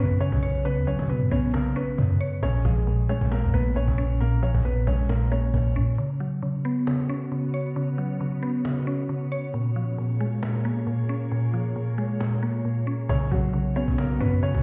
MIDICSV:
0, 0, Header, 1, 6, 480
1, 0, Start_track
1, 0, Tempo, 444444
1, 701, Time_signature, 4, 2, 24, 8
1, 15799, End_track
2, 0, Start_track
2, 0, Title_t, "Felt piano"
2, 0, Program_c, 0, 0
2, 0, Note_on_c, 0, 59, 74
2, 0, Note_on_c, 0, 71, 88
2, 187, Note_off_c, 0, 71, 0
2, 192, Note_off_c, 0, 59, 0
2, 221, Note_on_c, 0, 73, 88
2, 230, Note_on_c, 0, 61, 59
2, 672, Note_off_c, 0, 73, 0
2, 677, Note_off_c, 0, 61, 0
2, 702, Note_on_c, 0, 71, 106
2, 710, Note_on_c, 0, 59, 74
2, 907, Note_off_c, 0, 71, 0
2, 912, Note_off_c, 0, 59, 0
2, 942, Note_on_c, 0, 73, 82
2, 951, Note_on_c, 0, 61, 59
2, 1147, Note_off_c, 0, 73, 0
2, 1152, Note_off_c, 0, 61, 0
2, 1182, Note_on_c, 0, 71, 82
2, 1191, Note_on_c, 0, 59, 61
2, 1387, Note_off_c, 0, 71, 0
2, 1392, Note_off_c, 0, 59, 0
2, 1421, Note_on_c, 0, 73, 82
2, 1430, Note_on_c, 0, 61, 65
2, 1626, Note_off_c, 0, 73, 0
2, 1631, Note_off_c, 0, 61, 0
2, 1661, Note_on_c, 0, 70, 79
2, 1670, Note_on_c, 0, 58, 62
2, 1866, Note_off_c, 0, 70, 0
2, 1871, Note_off_c, 0, 58, 0
2, 1902, Note_on_c, 0, 71, 79
2, 1910, Note_on_c, 0, 59, 61
2, 2579, Note_off_c, 0, 71, 0
2, 2583, Note_off_c, 0, 59, 0
2, 2621, Note_on_c, 0, 73, 102
2, 2630, Note_on_c, 0, 61, 86
2, 2826, Note_off_c, 0, 73, 0
2, 2831, Note_off_c, 0, 61, 0
2, 2861, Note_on_c, 0, 68, 77
2, 2870, Note_on_c, 0, 56, 63
2, 3312, Note_off_c, 0, 68, 0
2, 3317, Note_off_c, 0, 56, 0
2, 3340, Note_on_c, 0, 73, 82
2, 3349, Note_on_c, 0, 61, 61
2, 3546, Note_off_c, 0, 73, 0
2, 3551, Note_off_c, 0, 61, 0
2, 3581, Note_on_c, 0, 70, 88
2, 3589, Note_on_c, 0, 58, 66
2, 3786, Note_off_c, 0, 70, 0
2, 3791, Note_off_c, 0, 58, 0
2, 3821, Note_on_c, 0, 71, 89
2, 3830, Note_on_c, 0, 59, 71
2, 4026, Note_off_c, 0, 71, 0
2, 4031, Note_off_c, 0, 59, 0
2, 4061, Note_on_c, 0, 73, 86
2, 4070, Note_on_c, 0, 61, 63
2, 4512, Note_off_c, 0, 73, 0
2, 4517, Note_off_c, 0, 61, 0
2, 4542, Note_on_c, 0, 70, 99
2, 4550, Note_on_c, 0, 58, 76
2, 4746, Note_off_c, 0, 70, 0
2, 4752, Note_off_c, 0, 58, 0
2, 4781, Note_on_c, 0, 73, 77
2, 4790, Note_on_c, 0, 61, 59
2, 4986, Note_off_c, 0, 73, 0
2, 4992, Note_off_c, 0, 61, 0
2, 5022, Note_on_c, 0, 71, 82
2, 5030, Note_on_c, 0, 59, 58
2, 5227, Note_off_c, 0, 71, 0
2, 5231, Note_off_c, 0, 59, 0
2, 5262, Note_on_c, 0, 73, 81
2, 5270, Note_on_c, 0, 61, 63
2, 5467, Note_off_c, 0, 73, 0
2, 5471, Note_off_c, 0, 61, 0
2, 5502, Note_on_c, 0, 70, 81
2, 5510, Note_on_c, 0, 58, 63
2, 5707, Note_off_c, 0, 70, 0
2, 5711, Note_off_c, 0, 58, 0
2, 5741, Note_on_c, 0, 73, 76
2, 5750, Note_on_c, 0, 61, 57
2, 6418, Note_off_c, 0, 73, 0
2, 6423, Note_off_c, 0, 61, 0
2, 14141, Note_on_c, 0, 73, 98
2, 14150, Note_on_c, 0, 61, 75
2, 14347, Note_off_c, 0, 73, 0
2, 14351, Note_off_c, 0, 61, 0
2, 14381, Note_on_c, 0, 66, 82
2, 14390, Note_on_c, 0, 54, 62
2, 14832, Note_off_c, 0, 66, 0
2, 14837, Note_off_c, 0, 54, 0
2, 14862, Note_on_c, 0, 73, 82
2, 14871, Note_on_c, 0, 61, 63
2, 15067, Note_off_c, 0, 73, 0
2, 15072, Note_off_c, 0, 61, 0
2, 15102, Note_on_c, 0, 70, 90
2, 15111, Note_on_c, 0, 58, 66
2, 15307, Note_off_c, 0, 70, 0
2, 15312, Note_off_c, 0, 58, 0
2, 15342, Note_on_c, 0, 71, 90
2, 15351, Note_on_c, 0, 59, 73
2, 15547, Note_off_c, 0, 71, 0
2, 15552, Note_off_c, 0, 59, 0
2, 15581, Note_on_c, 0, 73, 92
2, 15590, Note_on_c, 0, 61, 60
2, 15799, Note_off_c, 0, 61, 0
2, 15799, Note_off_c, 0, 73, 0
2, 15799, End_track
3, 0, Start_track
3, 0, Title_t, "Ambient pad"
3, 0, Program_c, 1, 92
3, 6461, Note_on_c, 1, 59, 83
3, 6461, Note_on_c, 1, 61, 75
3, 6461, Note_on_c, 1, 66, 78
3, 6461, Note_on_c, 1, 73, 94
3, 10263, Note_off_c, 1, 59, 0
3, 10263, Note_off_c, 1, 61, 0
3, 10263, Note_off_c, 1, 66, 0
3, 10301, Note_on_c, 1, 58, 85
3, 10301, Note_on_c, 1, 65, 76
3, 10301, Note_on_c, 1, 68, 78
3, 14103, Note_off_c, 1, 58, 0
3, 14103, Note_off_c, 1, 65, 0
3, 14103, Note_off_c, 1, 68, 0
3, 14142, Note_on_c, 1, 59, 86
3, 14142, Note_on_c, 1, 61, 77
3, 14142, Note_on_c, 1, 66, 76
3, 15799, Note_off_c, 1, 59, 0
3, 15799, Note_off_c, 1, 61, 0
3, 15799, Note_off_c, 1, 66, 0
3, 15799, Note_off_c, 1, 73, 0
3, 15799, End_track
4, 0, Start_track
4, 0, Title_t, "Synth pluck"
4, 0, Program_c, 2, 84
4, 0, Note_on_c, 2, 49, 90
4, 0, Note_on_c, 2, 54, 76
4, 0, Note_on_c, 2, 59, 84
4, 0, Note_on_c, 2, 61, 86
4, 209, Note_off_c, 2, 49, 0
4, 220, Note_off_c, 2, 54, 0
4, 222, Note_on_c, 2, 49, 88
4, 461, Note_on_c, 2, 73, 88
4, 689, Note_off_c, 2, 49, 0
4, 701, Note_off_c, 2, 59, 0
4, 702, Note_on_c, 2, 49, 98
4, 940, Note_on_c, 2, 54, 75
4, 1168, Note_off_c, 2, 49, 0
4, 1181, Note_off_c, 2, 61, 0
4, 1181, Note_on_c, 2, 49, 86
4, 1419, Note_on_c, 2, 59, 87
4, 1645, Note_off_c, 2, 49, 0
4, 1658, Note_on_c, 2, 49, 87
4, 1661, Note_off_c, 2, 73, 0
4, 1900, Note_on_c, 2, 61, 86
4, 2126, Note_off_c, 2, 49, 0
4, 2139, Note_on_c, 2, 49, 83
4, 2141, Note_off_c, 2, 54, 0
4, 2382, Note_on_c, 2, 73, 93
4, 2620, Note_off_c, 2, 49, 0
4, 2620, Note_off_c, 2, 59, 0
4, 2621, Note_off_c, 2, 61, 0
4, 2622, Note_off_c, 2, 73, 0
4, 2622, Note_on_c, 2, 46, 90
4, 2861, Note_on_c, 2, 53, 81
4, 3088, Note_off_c, 2, 46, 0
4, 3101, Note_on_c, 2, 46, 89
4, 3340, Note_on_c, 2, 56, 89
4, 3568, Note_off_c, 2, 46, 0
4, 3581, Note_on_c, 2, 46, 83
4, 3821, Note_on_c, 2, 58, 87
4, 4045, Note_off_c, 2, 46, 0
4, 4058, Note_on_c, 2, 46, 86
4, 4061, Note_off_c, 2, 53, 0
4, 4300, Note_on_c, 2, 61, 91
4, 4528, Note_off_c, 2, 46, 0
4, 4541, Note_off_c, 2, 56, 0
4, 4541, Note_on_c, 2, 46, 90
4, 4780, Note_on_c, 2, 53, 82
4, 5007, Note_off_c, 2, 46, 0
4, 5020, Note_on_c, 2, 46, 76
4, 5021, Note_off_c, 2, 58, 0
4, 5260, Note_on_c, 2, 56, 81
4, 5487, Note_off_c, 2, 46, 0
4, 5500, Note_on_c, 2, 46, 86
4, 5501, Note_off_c, 2, 61, 0
4, 5742, Note_on_c, 2, 58, 83
4, 5969, Note_off_c, 2, 46, 0
4, 5981, Note_off_c, 2, 53, 0
4, 5982, Note_on_c, 2, 46, 78
4, 6222, Note_on_c, 2, 61, 87
4, 6461, Note_off_c, 2, 56, 0
4, 6461, Note_off_c, 2, 58, 0
4, 6461, Note_off_c, 2, 61, 0
4, 6462, Note_off_c, 2, 46, 0
4, 6462, Note_on_c, 2, 49, 94
4, 6699, Note_on_c, 2, 54, 76
4, 6926, Note_off_c, 2, 49, 0
4, 6939, Note_on_c, 2, 49, 82
4, 7182, Note_on_c, 2, 59, 85
4, 7408, Note_off_c, 2, 49, 0
4, 7420, Note_on_c, 2, 49, 90
4, 7662, Note_on_c, 2, 61, 87
4, 7890, Note_off_c, 2, 49, 0
4, 7900, Note_off_c, 2, 54, 0
4, 7903, Note_on_c, 2, 49, 88
4, 8142, Note_on_c, 2, 73, 90
4, 8370, Note_off_c, 2, 49, 0
4, 8382, Note_off_c, 2, 59, 0
4, 8383, Note_on_c, 2, 49, 95
4, 8620, Note_on_c, 2, 54, 77
4, 8849, Note_off_c, 2, 49, 0
4, 8862, Note_off_c, 2, 61, 0
4, 8862, Note_on_c, 2, 49, 84
4, 9100, Note_on_c, 2, 59, 86
4, 9327, Note_off_c, 2, 49, 0
4, 9340, Note_on_c, 2, 49, 87
4, 9341, Note_off_c, 2, 73, 0
4, 9581, Note_on_c, 2, 61, 86
4, 9806, Note_off_c, 2, 49, 0
4, 9819, Note_on_c, 2, 49, 86
4, 9821, Note_off_c, 2, 54, 0
4, 10063, Note_on_c, 2, 73, 91
4, 10300, Note_off_c, 2, 49, 0
4, 10301, Note_off_c, 2, 59, 0
4, 10301, Note_off_c, 2, 61, 0
4, 10302, Note_off_c, 2, 73, 0
4, 10302, Note_on_c, 2, 46, 92
4, 10541, Note_on_c, 2, 53, 78
4, 10769, Note_off_c, 2, 46, 0
4, 10782, Note_on_c, 2, 46, 85
4, 11021, Note_on_c, 2, 56, 89
4, 11248, Note_off_c, 2, 46, 0
4, 11261, Note_on_c, 2, 46, 86
4, 11502, Note_on_c, 2, 58, 84
4, 11725, Note_off_c, 2, 46, 0
4, 11738, Note_on_c, 2, 46, 86
4, 11741, Note_off_c, 2, 53, 0
4, 11980, Note_on_c, 2, 61, 86
4, 12208, Note_off_c, 2, 46, 0
4, 12221, Note_off_c, 2, 56, 0
4, 12221, Note_on_c, 2, 46, 91
4, 12459, Note_on_c, 2, 53, 83
4, 12686, Note_off_c, 2, 46, 0
4, 12699, Note_on_c, 2, 46, 79
4, 12702, Note_off_c, 2, 58, 0
4, 12939, Note_on_c, 2, 56, 84
4, 13167, Note_off_c, 2, 46, 0
4, 13180, Note_on_c, 2, 46, 88
4, 13181, Note_off_c, 2, 61, 0
4, 13420, Note_on_c, 2, 58, 81
4, 13648, Note_off_c, 2, 46, 0
4, 13660, Note_off_c, 2, 53, 0
4, 13661, Note_on_c, 2, 46, 78
4, 13900, Note_on_c, 2, 61, 86
4, 14140, Note_off_c, 2, 56, 0
4, 14141, Note_off_c, 2, 46, 0
4, 14141, Note_off_c, 2, 58, 0
4, 14141, Note_off_c, 2, 61, 0
4, 14141, Note_on_c, 2, 49, 97
4, 14379, Note_on_c, 2, 54, 76
4, 14605, Note_off_c, 2, 49, 0
4, 14618, Note_on_c, 2, 49, 85
4, 14860, Note_on_c, 2, 59, 82
4, 15087, Note_off_c, 2, 49, 0
4, 15100, Note_on_c, 2, 49, 91
4, 15341, Note_on_c, 2, 61, 84
4, 15569, Note_off_c, 2, 49, 0
4, 15580, Note_off_c, 2, 54, 0
4, 15582, Note_on_c, 2, 49, 88
4, 15799, Note_off_c, 2, 49, 0
4, 15799, Note_off_c, 2, 59, 0
4, 15799, Note_off_c, 2, 61, 0
4, 15799, End_track
5, 0, Start_track
5, 0, Title_t, "808-style bass"
5, 0, Program_c, 3, 38
5, 0, Note_on_c, 3, 42, 101
5, 334, Note_off_c, 3, 42, 0
5, 348, Note_on_c, 3, 35, 114
5, 829, Note_on_c, 3, 39, 98
5, 845, Note_off_c, 3, 35, 0
5, 941, Note_on_c, 3, 35, 102
5, 957, Note_off_c, 3, 39, 0
5, 1062, Note_off_c, 3, 35, 0
5, 1069, Note_on_c, 3, 47, 106
5, 1308, Note_on_c, 3, 42, 100
5, 1325, Note_off_c, 3, 47, 0
5, 1416, Note_off_c, 3, 42, 0
5, 1421, Note_on_c, 3, 35, 105
5, 1882, Note_off_c, 3, 35, 0
5, 2141, Note_on_c, 3, 42, 110
5, 2372, Note_off_c, 3, 42, 0
5, 2621, Note_on_c, 3, 34, 113
5, 2852, Note_off_c, 3, 34, 0
5, 2861, Note_on_c, 3, 34, 104
5, 3214, Note_off_c, 3, 34, 0
5, 3469, Note_on_c, 3, 34, 106
5, 3709, Note_on_c, 3, 41, 97
5, 3725, Note_off_c, 3, 34, 0
5, 3816, Note_off_c, 3, 41, 0
5, 3820, Note_on_c, 3, 34, 102
5, 4173, Note_off_c, 3, 34, 0
5, 4188, Note_on_c, 3, 34, 104
5, 4879, Note_off_c, 3, 34, 0
5, 4909, Note_on_c, 3, 34, 103
5, 5247, Note_off_c, 3, 34, 0
5, 5261, Note_on_c, 3, 34, 104
5, 5952, Note_off_c, 3, 34, 0
5, 5981, Note_on_c, 3, 34, 107
5, 6221, Note_on_c, 3, 46, 101
5, 6238, Note_off_c, 3, 34, 0
5, 6449, Note_off_c, 3, 46, 0
5, 14141, Note_on_c, 3, 35, 110
5, 14372, Note_off_c, 3, 35, 0
5, 14381, Note_on_c, 3, 35, 107
5, 14964, Note_off_c, 3, 35, 0
5, 14989, Note_on_c, 3, 35, 105
5, 15327, Note_off_c, 3, 35, 0
5, 15341, Note_on_c, 3, 42, 103
5, 15694, Note_off_c, 3, 42, 0
5, 15708, Note_on_c, 3, 35, 109
5, 15799, Note_off_c, 3, 35, 0
5, 15799, End_track
6, 0, Start_track
6, 0, Title_t, "Cajon"
6, 221, Note_on_c, 9, 38, 32
6, 329, Note_off_c, 9, 38, 0
6, 348, Note_on_c, 9, 36, 94
6, 456, Note_off_c, 9, 36, 0
6, 463, Note_on_c, 9, 38, 46
6, 571, Note_off_c, 9, 38, 0
6, 703, Note_on_c, 9, 38, 41
6, 811, Note_off_c, 9, 38, 0
6, 939, Note_on_c, 9, 38, 49
6, 1047, Note_off_c, 9, 38, 0
6, 1069, Note_on_c, 9, 36, 91
6, 1177, Note_off_c, 9, 36, 0
6, 1182, Note_on_c, 9, 38, 49
6, 1290, Note_off_c, 9, 38, 0
6, 1421, Note_on_c, 9, 36, 99
6, 1529, Note_off_c, 9, 36, 0
6, 1662, Note_on_c, 9, 38, 106
6, 1770, Note_off_c, 9, 38, 0
6, 1902, Note_on_c, 9, 38, 21
6, 2010, Note_off_c, 9, 38, 0
6, 2029, Note_on_c, 9, 38, 38
6, 2137, Note_off_c, 9, 38, 0
6, 2141, Note_on_c, 9, 36, 98
6, 2249, Note_off_c, 9, 36, 0
6, 2384, Note_on_c, 9, 38, 46
6, 2492, Note_off_c, 9, 38, 0
6, 2621, Note_on_c, 9, 36, 106
6, 2729, Note_off_c, 9, 36, 0
6, 2861, Note_on_c, 9, 36, 100
6, 2969, Note_off_c, 9, 36, 0
6, 3101, Note_on_c, 9, 38, 49
6, 3209, Note_off_c, 9, 38, 0
6, 3469, Note_on_c, 9, 36, 90
6, 3577, Note_off_c, 9, 36, 0
6, 3581, Note_on_c, 9, 38, 107
6, 3661, Note_off_c, 9, 38, 0
6, 3661, Note_on_c, 9, 38, 34
6, 3742, Note_off_c, 9, 38, 0
6, 3742, Note_on_c, 9, 38, 43
6, 3821, Note_on_c, 9, 36, 83
6, 3850, Note_off_c, 9, 38, 0
6, 3929, Note_off_c, 9, 36, 0
6, 4062, Note_on_c, 9, 38, 32
6, 4170, Note_off_c, 9, 38, 0
6, 4187, Note_on_c, 9, 36, 95
6, 4295, Note_off_c, 9, 36, 0
6, 4303, Note_on_c, 9, 38, 46
6, 4411, Note_off_c, 9, 38, 0
6, 4543, Note_on_c, 9, 38, 40
6, 4651, Note_off_c, 9, 38, 0
6, 4781, Note_on_c, 9, 38, 49
6, 4845, Note_off_c, 9, 38, 0
6, 4845, Note_on_c, 9, 38, 43
6, 4909, Note_on_c, 9, 36, 92
6, 4953, Note_off_c, 9, 38, 0
6, 4965, Note_on_c, 9, 38, 30
6, 5017, Note_off_c, 9, 36, 0
6, 5022, Note_off_c, 9, 38, 0
6, 5022, Note_on_c, 9, 38, 49
6, 5130, Note_off_c, 9, 38, 0
6, 5261, Note_on_c, 9, 36, 100
6, 5341, Note_on_c, 9, 38, 35
6, 5369, Note_off_c, 9, 36, 0
6, 5421, Note_off_c, 9, 38, 0
6, 5421, Note_on_c, 9, 38, 33
6, 5501, Note_off_c, 9, 38, 0
6, 5501, Note_on_c, 9, 38, 111
6, 5581, Note_off_c, 9, 38, 0
6, 5581, Note_on_c, 9, 38, 33
6, 5661, Note_off_c, 9, 38, 0
6, 5661, Note_on_c, 9, 38, 33
6, 5741, Note_off_c, 9, 38, 0
6, 5741, Note_on_c, 9, 38, 36
6, 5849, Note_off_c, 9, 38, 0
6, 5869, Note_on_c, 9, 38, 22
6, 5977, Note_off_c, 9, 38, 0
6, 5981, Note_on_c, 9, 36, 96
6, 6089, Note_off_c, 9, 36, 0
6, 6108, Note_on_c, 9, 38, 31
6, 6216, Note_off_c, 9, 38, 0
6, 6462, Note_on_c, 9, 38, 38
6, 6570, Note_off_c, 9, 38, 0
6, 6700, Note_on_c, 9, 38, 50
6, 6808, Note_off_c, 9, 38, 0
6, 6942, Note_on_c, 9, 38, 49
6, 7050, Note_off_c, 9, 38, 0
6, 7422, Note_on_c, 9, 38, 109
6, 7501, Note_off_c, 9, 38, 0
6, 7501, Note_on_c, 9, 38, 35
6, 7581, Note_off_c, 9, 38, 0
6, 7581, Note_on_c, 9, 38, 43
6, 7661, Note_off_c, 9, 38, 0
6, 7661, Note_on_c, 9, 38, 35
6, 7769, Note_off_c, 9, 38, 0
6, 7901, Note_on_c, 9, 38, 33
6, 8009, Note_off_c, 9, 38, 0
6, 8028, Note_on_c, 9, 38, 33
6, 8136, Note_off_c, 9, 38, 0
6, 8143, Note_on_c, 9, 38, 46
6, 8251, Note_off_c, 9, 38, 0
6, 8383, Note_on_c, 9, 38, 41
6, 8491, Note_off_c, 9, 38, 0
6, 8619, Note_on_c, 9, 38, 48
6, 8727, Note_off_c, 9, 38, 0
6, 8862, Note_on_c, 9, 38, 50
6, 8970, Note_off_c, 9, 38, 0
6, 9098, Note_on_c, 9, 38, 40
6, 9206, Note_off_c, 9, 38, 0
6, 9342, Note_on_c, 9, 38, 110
6, 9450, Note_off_c, 9, 38, 0
6, 9582, Note_on_c, 9, 38, 21
6, 9690, Note_off_c, 9, 38, 0
6, 9709, Note_on_c, 9, 38, 37
6, 9817, Note_off_c, 9, 38, 0
6, 9817, Note_on_c, 9, 38, 38
6, 9925, Note_off_c, 9, 38, 0
6, 10064, Note_on_c, 9, 38, 44
6, 10172, Note_off_c, 9, 38, 0
6, 10302, Note_on_c, 9, 38, 39
6, 10410, Note_off_c, 9, 38, 0
6, 10539, Note_on_c, 9, 38, 48
6, 10647, Note_off_c, 9, 38, 0
6, 10781, Note_on_c, 9, 38, 47
6, 10889, Note_off_c, 9, 38, 0
6, 11261, Note_on_c, 9, 38, 110
6, 11341, Note_off_c, 9, 38, 0
6, 11341, Note_on_c, 9, 38, 35
6, 11421, Note_off_c, 9, 38, 0
6, 11421, Note_on_c, 9, 38, 43
6, 11501, Note_off_c, 9, 38, 0
6, 11501, Note_on_c, 9, 38, 35
6, 11609, Note_off_c, 9, 38, 0
6, 11741, Note_on_c, 9, 38, 31
6, 11849, Note_off_c, 9, 38, 0
6, 11868, Note_on_c, 9, 38, 32
6, 11976, Note_off_c, 9, 38, 0
6, 11983, Note_on_c, 9, 38, 47
6, 12091, Note_off_c, 9, 38, 0
6, 12222, Note_on_c, 9, 38, 41
6, 12330, Note_off_c, 9, 38, 0
6, 12461, Note_on_c, 9, 38, 52
6, 12525, Note_off_c, 9, 38, 0
6, 12525, Note_on_c, 9, 38, 45
6, 12588, Note_off_c, 9, 38, 0
6, 12588, Note_on_c, 9, 38, 38
6, 12644, Note_off_c, 9, 38, 0
6, 12644, Note_on_c, 9, 38, 30
6, 12701, Note_off_c, 9, 38, 0
6, 12701, Note_on_c, 9, 38, 50
6, 12809, Note_off_c, 9, 38, 0
6, 12941, Note_on_c, 9, 38, 34
6, 13020, Note_off_c, 9, 38, 0
6, 13020, Note_on_c, 9, 38, 34
6, 13100, Note_off_c, 9, 38, 0
6, 13100, Note_on_c, 9, 38, 33
6, 13181, Note_off_c, 9, 38, 0
6, 13181, Note_on_c, 9, 38, 105
6, 13261, Note_off_c, 9, 38, 0
6, 13261, Note_on_c, 9, 38, 34
6, 13341, Note_off_c, 9, 38, 0
6, 13341, Note_on_c, 9, 38, 34
6, 13421, Note_off_c, 9, 38, 0
6, 13421, Note_on_c, 9, 38, 35
6, 13529, Note_off_c, 9, 38, 0
6, 13548, Note_on_c, 9, 38, 21
6, 13656, Note_off_c, 9, 38, 0
6, 13661, Note_on_c, 9, 38, 31
6, 13769, Note_off_c, 9, 38, 0
6, 13788, Note_on_c, 9, 38, 32
6, 13896, Note_off_c, 9, 38, 0
6, 14141, Note_on_c, 9, 36, 109
6, 14249, Note_off_c, 9, 36, 0
6, 14381, Note_on_c, 9, 36, 96
6, 14489, Note_off_c, 9, 36, 0
6, 14622, Note_on_c, 9, 38, 49
6, 14730, Note_off_c, 9, 38, 0
6, 14989, Note_on_c, 9, 36, 90
6, 15097, Note_off_c, 9, 36, 0
6, 15102, Note_on_c, 9, 38, 108
6, 15181, Note_off_c, 9, 38, 0
6, 15181, Note_on_c, 9, 38, 35
6, 15261, Note_off_c, 9, 38, 0
6, 15261, Note_on_c, 9, 38, 43
6, 15341, Note_on_c, 9, 36, 88
6, 15369, Note_off_c, 9, 38, 0
6, 15449, Note_off_c, 9, 36, 0
6, 15581, Note_on_c, 9, 38, 31
6, 15689, Note_off_c, 9, 38, 0
6, 15708, Note_on_c, 9, 36, 94
6, 15799, Note_off_c, 9, 36, 0
6, 15799, End_track
0, 0, End_of_file